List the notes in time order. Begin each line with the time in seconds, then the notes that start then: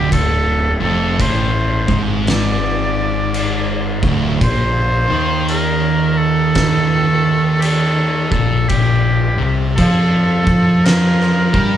Already playing: D2 G4
0.11 D1 D2 A4, kick, crash
0.80 F1 F2 A4
1.19 A1 A2 C5, kick, crash
1.88 G#1 G#2, kick
2.27 D5, snare, crash
3.34 crash
4.03 D1 D2, kick
4.40 A#1 A#2 C5, kick, crash
5.10 D#2 D#3
5.48 A#4, crash
6.18 A4
6.55 kick, snare, crash
7.60 G4 A4, crash
8.31 A#1 A#2 A4, kick
8.69 A#1 A#2 G4, kick, crash
9.37 C2 C3
9.76 F2 F3 A4, kick, crash
10.45 F2 F3, kick
10.85 A#4, snare, crash
11.21 snare
11.53 G2 G3, kick